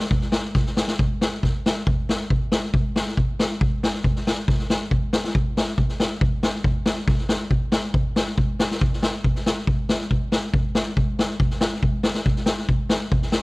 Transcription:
0.11 kick
0.21 snare
0.32 snare
0.54 kick, snare
0.66 snare
0.77 snare
0.88 snare
0.99 kick
1.21 snare
1.43 kick, snare
1.66 snare
1.87 kick
2.09 snare
2.30 kick
2.52 snare
2.74 kick
2.96 snare
3.07 snare
3.17 kick
3.39 snare
3.61 kick
3.83 snare
3.94 snare
4.04 kick
4.16 snare
4.27 snare
4.48 kick, snare
4.59 snare
4.70 snare
4.91 kick
5.13 snare
5.24 snare
5.35 kick
5.57 snare
5.67 snare
5.78 kick
5.89 snare
6.00 snare
6.21 kick
6.43 snare
6.64 kick
6.86 snare
7.08 kick, snare
7.18 snare
7.29 snare
7.51 kick
7.72 snare
7.94 kick
8.16 snare
8.27 snare
8.38 kick
8.60 snare
8.71 snare
8.81 kick
8.93 snare
9.03 snare
9.24 kick
9.35 snare
9.46 snare
9.67 kick
9.89 snare
10.00 snare
10.11 kick
10.32 snare
10.54 kick
10.75 snare
10.97 kick
11.19 snare
11.40 kick
11.50 snare
11.61 snare
11.72 snare
11.83 kick
12.03 snare
12.14 snare
12.26 kick
12.36 snare
12.46 snare
12.57 snare
12.69 kick
12.89 snare
13.12 kick
13.22 snare
13.32 snare

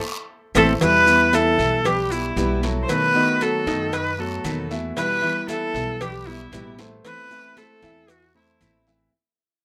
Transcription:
0.55 A1 E3 A3 C4 E4 A4 C5, cowbell, high conga, long guiro, claves, maracas
0.81 E2 B2 E3 G3 B3 E4 B4 E5, cowbell, long guiro, maracas
1.06 E3 G3 B3 E4, claves, maracas
1.33 E3 E4 A4 E5, cowbell, high conga, short guiro, maracas
1.58 B1 G3 B3 E4, short guiro, maracas
1.84 G3 G4 B4, muted steel-string acoustic guitar stroke, cowbell, high conga, low conga, long guiro, claves, maracas
2.11 G3 B3 E4, maracas
2.36 B1 B2 E3 G3 B3 E4 G4 B4, cowbell, high conga, short guiro, maracas
2.63 F#3 G3 B3 E4 F#4 A4, cowbell, high conga, short guiro, maracas
2.83 C5
2.88 B2 D#3 A3 B3 F#4 B4, cowbell, high conga, long guiro, claves, maracas
3.14 D#3 A3 B3 D#4 F#4 D#5
3.41 F#3 F#4 A4, cowbell, high conga, short guiro, claves, maracas
3.66 F#2 D#3 A3 B3 D#4 F#4 D#5, cowbell, high conga, short guiro, maracas
3.92 B4, muted steel-string acoustic guitar stroke, cowbell, high conga, long guiro, maracas
4.18 F#3 A3 B3 F#4 A4, high conga
4.44 E2 B2 D#3 A3 B3 F#4, cowbell, high conga, short guiro, claves, maracas
4.71 E3 A3 B3 E4 F#4 E5, high conga, short guiro, maracas
4.96 B2 E3 G3 B3 E4 B4 E5, cowbell, long guiro, maracas
5.22 E3 G3 B3 E4, high conga, claves
5.48 E3 E4 A4 E5, cowbell, high conga, short guiro, maracas
5.74 B1 G3 B3 E4, high conga, short guiro, maracas
6.01 G3 G4 B4, muted steel-string acoustic guitar stroke, cowbell, high conga, low conga, long guiro, claves, maracas
6.26 G3 B3 E4
6.52 A1 B2 E3 G3 B3 E4 G4 B4, cowbell, high conga, short guiro, maracas
6.78 G3 A3 B3 E4 A4 C5, cowbell, high conga, short guiro, maracas
7.04 E3 A3 C4 E4 B4, cowbell, long guiro, claves, maracas
7.30 E3 A3 C4 E4 E5, maracas
7.57 A3 A4 C5, cowbell, high conga, short guiro, claves, maracas
7.83 E2 E3 A3 C4 E4 E5, cowbell, high conga, short guiro, maracas
8.08 F#4, muted steel-string acoustic guitar stroke, cowbell, high conga, long guiro, maracas
8.35 A3 C4 E4 A4 C5
8.60 A1 E3 A3 C4 E4, cowbell, high conga, short guiro, claves, maracas
8.87 E3 A3 C4 E4 E5, short guiro, maracas

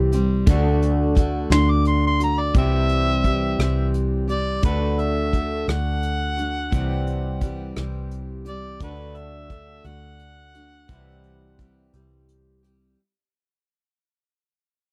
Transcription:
Already playing: C2 C3 E3 G3 C4 G4
0.12 G3 C4 G4, closed hi-hat
0.47 D2 D3 A3 D4 F#4, kick, closed hi-hat
0.82 closed hi-hat
1.15 D3 A3 D4 F#4, kick, closed hi-hat
1.50 D2 D3 A3 D4 F#4 C6, snare, closed hi-hat
1.71 D6
1.85 C6, closed hi-hat
2.07 C6
2.20 A3 D4 F#4, closed hi-hat
2.24 A#5
2.41 D5
2.55 C2 C3 E3 G3 C4 G4 E5, kick, closed hi-hat
2.89 closed hi-hat
3.24 E3 G3 C4 G4, kick, closed hi-hat
3.59 C2 C3 E3 G3 C4 G4, cross-stick, closed hi-hat
3.94 closed hi-hat
4.28 G3 C4 G4 D5, closed hi-hat
4.63 D2 D3 A3 D4 F#4 B4, kick, closed hi-hat
4.99 E5, closed hi-hat
5.32 D3 A3 D4 F#4, kick, closed hi-hat
5.68 D2 D3 A3 D4 F#4 F#5, cross-stick, closed hi-hat
6.03 closed hi-hat
6.37 A3 D4 F#4, closed hi-hat
6.72 C2 C3 E3 G3 C4 G4, kick, closed hi-hat
7.07 closed hi-hat
7.41 E3 G3 C4 G4, kick, closed hi-hat
7.76 C2 C3 E3 G3 C4 G4, cross-stick, closed hi-hat
8.11 closed hi-hat
8.45 G3 C4 G4 D5, closed hi-hat
8.80 D2 D3 A3 D4 F#4 B4, kick, closed hi-hat
9.15 E5, closed hi-hat
9.50 D3 A3 D4 F#4, kick, closed hi-hat
9.84 D2 D3 A3 D4 F#4 F#5, closed hi-hat
10.19 closed hi-hat
10.54 A3 D4 F#4, closed hi-hat
10.88 C2 C3 E3 G3 C4 E4 G4, kick, closed hi-hat
11.24 closed hi-hat
11.59 E3 G3 C4 G4, kick, closed hi-hat
11.93 C2 C3 E3 G3 C4 G4, closed hi-hat
12.29 closed hi-hat
12.63 G3 C4 G4, closed hi-hat

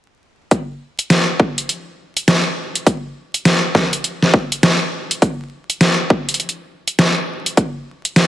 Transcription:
0.51 kick, closed hi-hat
0.99 closed hi-hat
1.10 snare, closed hi-hat
1.40 kick
1.58 closed hi-hat
1.69 closed hi-hat
2.17 closed hi-hat
2.28 snare, closed hi-hat
2.76 closed hi-hat
2.87 kick, closed hi-hat
3.34 closed hi-hat
3.45 snare, closed hi-hat
3.75 kick, snare
3.93 closed hi-hat
4.04 closed hi-hat
4.23 snare
4.34 kick
4.52 closed hi-hat
4.63 snare, closed hi-hat
5.11 closed hi-hat
5.22 kick, closed hi-hat
5.70 closed hi-hat
5.81 snare, closed hi-hat
6.10 kick
6.29 closed hi-hat
6.34 closed hi-hat
6.40 closed hi-hat
6.49 closed hi-hat
6.88 closed hi-hat
6.99 snare, closed hi-hat
7.46 closed hi-hat
7.57 kick, closed hi-hat
8.05 closed hi-hat
8.16 snare, closed hi-hat

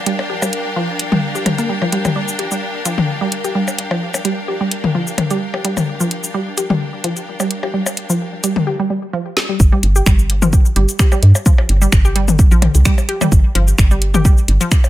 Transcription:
Already playing: D4 A#4 F5 G5
0.06 G3, closed hi-hat
0.19 percussion blips
0.30 G4
0.42 G3, percussion blips, cabasa
0.53 closed hi-hat
0.76 F3
0.99 closed hi-hat
1.12 G3, mid tom
1.35 G4, cabasa
1.46 G3, closed hi-hat, mid tom, percussion blips
1.58 A#3, closed hi-hat, cabasa
1.69 G3
1.82 F3, percussion blips
1.92 G3, closed hi-hat
2.05 G3, closed hi-hat, mid tom, percussion blips, cabasa
2.16 G3
2.28 cabasa
2.39 G4, closed hi-hat
2.51 G3, cabasa
2.85 F3, closed hi-hat, cabasa
2.98 mid tom
3.21 G3
3.32 closed hi-hat
3.44 G4, closed hi-hat, cabasa
3.55 G3
3.68 percussion blips, cabasa
3.79 closed hi-hat
3.91 F3, percussion blips
4.14 percussion blips, cabasa
4.25 G3, closed hi-hat
4.48 G4
4.61 G3
4.71 closed hi-hat
4.84 mid tom
4.95 F3
5.07 cabasa
5.18 closed hi-hat, mid tom, percussion blips
5.31 G3, closed hi-hat, cabasa
5.54 G4, percussion blips
5.65 G3, closed hi-hat
5.77 mid tom, percussion blips, cabasa
6.00 F3, cabasa
6.11 closed hi-hat
6.24 cabasa
6.34 G3
6.57 G4, closed hi-hat, cabasa
6.70 G3, mid tom
7.04 F3, closed hi-hat
7.17 closed hi-hat, cabasa
7.40 G3, percussion blips, cabasa
7.51 closed hi-hat
7.63 G4, percussion blips
7.74 G3
7.86 percussion blips, cabasa
7.97 closed hi-hat
8.10 F3, cabasa
8.44 G3, closed hi-hat, cabasa
8.56 mid tom
8.67 G4
8.79 G3
8.90 G3
9.13 F3
9.37 snare
9.49 G3
9.60 G1, kick, cabasa
9.72 G3
9.83 G1, closed hi-hat
9.96 G4, cabasa
10.06 G1 G3, finger snap, kick, cabasa
10.19 cabasa
10.30 closed hi-hat
10.42 F3, mid tom, cabasa
10.53 kick, cabasa
10.65 cabasa
10.76 G1 G3, closed hi-hat
10.89 closed hi-hat, cabasa
10.99 G4, finger snap, kick, cabasa
11.12 G3, percussion blips, cabasa
11.23 G2, closed hi-hat
11.35 percussion blips, cabasa
11.46 F3, kick, cabasa
11.58 percussion blips
11.69 G1, closed hi-hat
11.81 G3, cabasa
11.92 G1, finger snap, kick, cabasa
12.05 G4, cabasa
12.15 G3, closed hi-hat
12.28 mid tom, cabasa
12.39 kick, cabasa
12.51 A#1 F3, cabasa
12.62 closed hi-hat, mid tom, percussion blips
12.75 C2, closed hi-hat, cabasa
12.85 G3, finger snap, kick, cabasa
12.98 percussion blips, cabasa
13.09 G4, closed hi-hat
13.21 G3, mid tom, percussion blips, cabasa
13.32 G1, kick, cabasa
13.55 G1 F3, closed hi-hat
13.68 cabasa
13.78 G1, finger snap, kick, cabasa
13.91 G3, cabasa
14.02 closed hi-hat
14.14 G4, mid tom, cabasa
14.25 G3, kick, cabasa
14.38 cabasa
14.48 G1, closed hi-hat
14.61 F3, closed hi-hat, cabasa
14.71 finger snap, kick, cabasa
14.84 percussion blips, cabasa

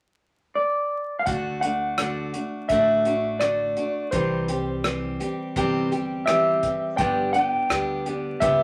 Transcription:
0.55 D5
1.19 F5
1.26 D2 D3 A3 D4 F#4 F#5, kick, closed hi-hat
1.61 A3 D4 F#4 F#5, closed hi-hat
1.98 D3 A3 D4, cross-stick, closed hi-hat
2.02 F#4
2.33 A3 D4 F#4, closed hi-hat
2.69 A1 D3 A3 D4 F#4 E5, kick, closed hi-hat
3.05 A3 D4 F#4, closed hi-hat
3.40 D3 A3 D5, cross-stick, closed hi-hat
3.44 D4 F#4
3.77 A3 D4 F#4, closed hi-hat
4.11 C2 C3 E3 G3 C4 G4 C5, kick, closed hi-hat
4.48 G3 C4 G4, closed hi-hat
4.84 E3 G3 C4 G4, cross-stick, closed hi-hat
5.20 G3 C4 G4, closed hi-hat
5.56 G1 C3 E3 G3 C4 G4, kick, closed hi-hat
5.91 G3 C4 G4, closed hi-hat
6.26 E3 G3 C4 E5, cross-stick, closed hi-hat
6.30 G4
6.63 G3 C4 G4, kick, closed hi-hat
6.97 G1 G2 D3 G3 B3 D4 G4 G5, kick, closed hi-hat
7.33 G3 B3 D4 G4 G5, closed hi-hat
7.69 D2 G3 B3 D4 G4, cross-stick, closed hi-hat
8.06 G3 B3 D4 G4, closed hi-hat
8.40 C#2 G2 G3 B3 D4 G4 E5, kick, closed hi-hat

